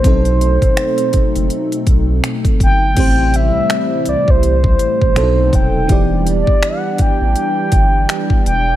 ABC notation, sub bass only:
X:1
M:4/4
L:1/16
Q:"Swing 16ths" 1/4=82
K:Em
V:1 name="Sub bass" clef=bass
B,,,3 F,,, z2 F,,, F,,, z2 B,,,2 z2 G,,,2 | A,,,3 C,, z2 C,, C,,3 A,,, A,,, B,,,2 ^D,,,2 | E,,,3 A,,, z2 A,,, A,,, z2 G,,,2 z2 E,,,2 |]